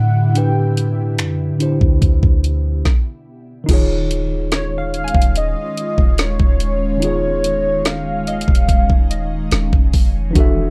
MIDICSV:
0, 0, Header, 1, 7, 480
1, 0, Start_track
1, 0, Tempo, 833333
1, 204, Time_signature, 4, 2, 24, 8
1, 6164, End_track
2, 0, Start_track
2, 0, Title_t, "Soft synth lead"
2, 0, Program_c, 0, 80
2, 0, Note_on_c, 0, 78, 91
2, 211, Note_on_c, 0, 79, 102
2, 220, Note_off_c, 0, 78, 0
2, 688, Note_off_c, 0, 79, 0
2, 2853, Note_on_c, 0, 77, 121
2, 3095, Note_on_c, 0, 75, 111
2, 3103, Note_off_c, 0, 77, 0
2, 3575, Note_on_c, 0, 73, 107
2, 3583, Note_off_c, 0, 75, 0
2, 4049, Note_off_c, 0, 73, 0
2, 4055, Note_on_c, 0, 73, 100
2, 4534, Note_on_c, 0, 77, 110
2, 4542, Note_off_c, 0, 73, 0
2, 5489, Note_off_c, 0, 77, 0
2, 6164, End_track
3, 0, Start_track
3, 0, Title_t, "Synth pluck"
3, 0, Program_c, 1, 84
3, 2603, Note_on_c, 1, 73, 70
3, 2753, Note_on_c, 1, 77, 56
3, 2904, Note_on_c, 1, 80, 55
3, 3442, Note_off_c, 1, 73, 0
3, 3577, Note_off_c, 1, 77, 0
3, 3712, Note_off_c, 1, 80, 0
3, 4768, Note_on_c, 1, 75, 75
3, 5237, Note_off_c, 1, 75, 0
3, 5244, Note_on_c, 1, 75, 53
3, 6082, Note_off_c, 1, 75, 0
3, 6164, End_track
4, 0, Start_track
4, 0, Title_t, "Tine electric piano"
4, 0, Program_c, 2, 4
4, 0, Control_c, 2, 64, 127
4, 0, Note_on_c, 2, 50, 79
4, 0, Note_on_c, 2, 62, 73
4, 0, Note_on_c, 2, 64, 75
4, 0, Note_on_c, 2, 67, 74
4, 0, Note_on_c, 2, 72, 83
4, 167, Note_off_c, 2, 50, 0
4, 174, Note_off_c, 2, 62, 0
4, 181, Note_off_c, 2, 64, 0
4, 188, Note_off_c, 2, 67, 0
4, 190, Note_on_c, 2, 50, 64
4, 195, Note_off_c, 2, 72, 0
4, 198, Note_on_c, 2, 62, 60
4, 205, Note_on_c, 2, 64, 59
4, 211, Note_on_c, 2, 67, 59
4, 218, Note_on_c, 2, 71, 73
4, 904, Note_off_c, 2, 50, 0
4, 910, Note_off_c, 2, 62, 0
4, 911, Note_on_c, 2, 50, 54
4, 917, Note_off_c, 2, 64, 0
4, 917, Note_on_c, 2, 62, 53
4, 924, Note_off_c, 2, 67, 0
4, 924, Note_on_c, 2, 64, 53
4, 931, Note_off_c, 2, 71, 0
4, 931, Note_on_c, 2, 67, 50
4, 938, Note_on_c, 2, 72, 64
4, 1637, Note_off_c, 2, 50, 0
4, 1641, Note_off_c, 2, 62, 0
4, 1644, Note_off_c, 2, 64, 0
4, 1647, Note_off_c, 2, 67, 0
4, 1651, Note_off_c, 2, 72, 0
4, 1651, Control_c, 2, 64, 0
4, 2096, Note_on_c, 2, 51, 85
4, 2110, Note_on_c, 2, 63, 76
4, 2124, Note_on_c, 2, 65, 72
4, 2137, Note_on_c, 2, 68, 77
4, 2151, Note_on_c, 2, 73, 91
4, 2243, Control_c, 2, 64, 127
4, 4007, Note_off_c, 2, 51, 0
4, 4014, Note_off_c, 2, 63, 0
4, 4016, Note_on_c, 2, 51, 66
4, 4021, Note_off_c, 2, 65, 0
4, 4028, Note_off_c, 2, 68, 0
4, 4031, Note_on_c, 2, 63, 64
4, 4035, Note_off_c, 2, 73, 0
4, 4045, Note_on_c, 2, 65, 63
4, 4058, Note_on_c, 2, 68, 65
4, 4073, Note_on_c, 2, 73, 77
4, 5927, Note_off_c, 2, 51, 0
4, 5934, Note_off_c, 2, 63, 0
4, 5937, Note_on_c, 2, 52, 81
4, 5941, Note_off_c, 2, 65, 0
4, 5948, Note_off_c, 2, 68, 0
4, 5951, Note_on_c, 2, 62, 74
4, 5955, Note_off_c, 2, 73, 0
4, 5964, Note_on_c, 2, 66, 76
4, 5972, Control_c, 2, 64, 0
4, 5978, Note_on_c, 2, 69, 75
4, 5992, Note_on_c, 2, 76, 92
4, 6057, Control_c, 2, 64, 127
4, 6164, Note_off_c, 2, 52, 0
4, 6164, Note_off_c, 2, 62, 0
4, 6164, Note_off_c, 2, 66, 0
4, 6164, Note_off_c, 2, 69, 0
4, 6164, Note_off_c, 2, 76, 0
4, 6164, End_track
5, 0, Start_track
5, 0, Title_t, "Ambient pad"
5, 0, Program_c, 3, 92
5, 0, Note_on_c, 3, 50, 77
5, 0, Note_on_c, 3, 60, 73
5, 0, Note_on_c, 3, 64, 88
5, 0, Note_on_c, 3, 67, 73
5, 185, Note_off_c, 3, 60, 0
5, 204, Note_on_c, 3, 47, 72
5, 1621, Note_off_c, 3, 50, 0
5, 1621, Note_off_c, 3, 64, 0
5, 1621, Note_off_c, 3, 67, 0
5, 1630, Note_off_c, 3, 47, 0
5, 2123, Note_on_c, 3, 51, 79
5, 2124, Note_on_c, 3, 56, 76
5, 2124, Note_on_c, 3, 61, 73
5, 2124, Note_on_c, 3, 65, 93
5, 4025, Note_off_c, 3, 65, 0
5, 4044, Note_on_c, 3, 63, 86
5, 5941, Note_off_c, 3, 51, 0
5, 5941, Note_off_c, 3, 56, 0
5, 5941, Note_off_c, 3, 61, 0
5, 5945, Note_off_c, 3, 63, 0
5, 6164, End_track
6, 0, Start_track
6, 0, Title_t, "808-style bass"
6, 0, Program_c, 4, 38
6, 0, Note_on_c, 4, 45, 106
6, 684, Note_on_c, 4, 42, 93
6, 692, Note_off_c, 4, 45, 0
6, 864, Note_on_c, 4, 45, 93
6, 872, Note_off_c, 4, 42, 0
6, 1035, Note_off_c, 4, 45, 0
6, 1044, Note_on_c, 4, 38, 99
6, 1159, Note_off_c, 4, 38, 0
6, 1162, Note_on_c, 4, 38, 101
6, 1278, Note_off_c, 4, 38, 0
6, 1284, Note_on_c, 4, 38, 97
6, 1630, Note_off_c, 4, 38, 0
6, 2124, Note_on_c, 4, 27, 110
6, 2941, Note_off_c, 4, 27, 0
6, 2964, Note_on_c, 4, 27, 102
6, 3194, Note_off_c, 4, 27, 0
6, 3444, Note_on_c, 4, 27, 104
6, 3675, Note_off_c, 4, 27, 0
6, 3684, Note_on_c, 4, 27, 103
6, 4861, Note_off_c, 4, 27, 0
6, 4884, Note_on_c, 4, 27, 100
6, 5461, Note_off_c, 4, 27, 0
6, 5484, Note_on_c, 4, 27, 101
6, 5599, Note_off_c, 4, 27, 0
6, 5604, Note_on_c, 4, 29, 102
6, 5949, Note_off_c, 4, 29, 0
6, 5964, Note_on_c, 4, 28, 100
6, 6164, Note_off_c, 4, 28, 0
6, 6164, End_track
7, 0, Start_track
7, 0, Title_t, "Drums"
7, 204, Note_on_c, 9, 42, 74
7, 262, Note_off_c, 9, 42, 0
7, 445, Note_on_c, 9, 42, 65
7, 503, Note_off_c, 9, 42, 0
7, 682, Note_on_c, 9, 42, 62
7, 685, Note_on_c, 9, 26, 113
7, 740, Note_off_c, 9, 42, 0
7, 742, Note_off_c, 9, 26, 0
7, 923, Note_on_c, 9, 42, 65
7, 981, Note_off_c, 9, 42, 0
7, 1043, Note_on_c, 9, 36, 90
7, 1101, Note_off_c, 9, 36, 0
7, 1162, Note_on_c, 9, 36, 85
7, 1164, Note_on_c, 9, 42, 69
7, 1220, Note_off_c, 9, 36, 0
7, 1222, Note_off_c, 9, 42, 0
7, 1284, Note_on_c, 9, 36, 90
7, 1341, Note_off_c, 9, 36, 0
7, 1406, Note_on_c, 9, 42, 50
7, 1463, Note_off_c, 9, 42, 0
7, 1644, Note_on_c, 9, 36, 101
7, 1645, Note_on_c, 9, 38, 84
7, 1701, Note_off_c, 9, 36, 0
7, 1702, Note_off_c, 9, 38, 0
7, 2124, Note_on_c, 9, 36, 112
7, 2124, Note_on_c, 9, 42, 75
7, 2124, Note_on_c, 9, 49, 102
7, 2181, Note_off_c, 9, 49, 0
7, 2182, Note_off_c, 9, 36, 0
7, 2182, Note_off_c, 9, 42, 0
7, 2366, Note_on_c, 9, 42, 71
7, 2424, Note_off_c, 9, 42, 0
7, 2602, Note_on_c, 9, 42, 67
7, 2605, Note_on_c, 9, 38, 117
7, 2660, Note_off_c, 9, 42, 0
7, 2662, Note_off_c, 9, 38, 0
7, 2844, Note_on_c, 9, 42, 45
7, 2902, Note_off_c, 9, 42, 0
7, 2925, Note_on_c, 9, 42, 57
7, 2964, Note_on_c, 9, 36, 101
7, 2982, Note_off_c, 9, 42, 0
7, 3004, Note_on_c, 9, 42, 75
7, 3021, Note_off_c, 9, 36, 0
7, 3062, Note_off_c, 9, 42, 0
7, 3085, Note_on_c, 9, 42, 70
7, 3142, Note_off_c, 9, 42, 0
7, 3326, Note_on_c, 9, 42, 57
7, 3384, Note_off_c, 9, 42, 0
7, 3444, Note_on_c, 9, 36, 90
7, 3502, Note_off_c, 9, 36, 0
7, 3561, Note_on_c, 9, 42, 69
7, 3566, Note_on_c, 9, 38, 110
7, 3618, Note_off_c, 9, 42, 0
7, 3624, Note_off_c, 9, 38, 0
7, 3684, Note_on_c, 9, 36, 98
7, 3741, Note_off_c, 9, 36, 0
7, 3802, Note_on_c, 9, 42, 72
7, 3860, Note_off_c, 9, 42, 0
7, 4045, Note_on_c, 9, 42, 80
7, 4103, Note_off_c, 9, 42, 0
7, 4286, Note_on_c, 9, 42, 69
7, 4344, Note_off_c, 9, 42, 0
7, 4523, Note_on_c, 9, 42, 66
7, 4525, Note_on_c, 9, 38, 125
7, 4581, Note_off_c, 9, 42, 0
7, 4583, Note_off_c, 9, 38, 0
7, 4765, Note_on_c, 9, 42, 43
7, 4822, Note_off_c, 9, 42, 0
7, 4845, Note_on_c, 9, 42, 57
7, 4884, Note_on_c, 9, 36, 98
7, 4902, Note_off_c, 9, 42, 0
7, 4924, Note_on_c, 9, 42, 73
7, 4941, Note_off_c, 9, 36, 0
7, 4982, Note_off_c, 9, 42, 0
7, 5003, Note_on_c, 9, 36, 90
7, 5005, Note_on_c, 9, 42, 72
7, 5061, Note_off_c, 9, 36, 0
7, 5063, Note_off_c, 9, 42, 0
7, 5124, Note_on_c, 9, 36, 93
7, 5182, Note_off_c, 9, 36, 0
7, 5246, Note_on_c, 9, 42, 58
7, 5304, Note_off_c, 9, 42, 0
7, 5480, Note_on_c, 9, 42, 66
7, 5486, Note_on_c, 9, 38, 110
7, 5538, Note_off_c, 9, 42, 0
7, 5544, Note_off_c, 9, 38, 0
7, 5604, Note_on_c, 9, 36, 99
7, 5661, Note_off_c, 9, 36, 0
7, 5723, Note_on_c, 9, 46, 72
7, 5724, Note_on_c, 9, 36, 95
7, 5780, Note_off_c, 9, 46, 0
7, 5781, Note_off_c, 9, 36, 0
7, 5964, Note_on_c, 9, 36, 123
7, 5965, Note_on_c, 9, 42, 77
7, 6022, Note_off_c, 9, 36, 0
7, 6022, Note_off_c, 9, 42, 0
7, 6164, End_track
0, 0, End_of_file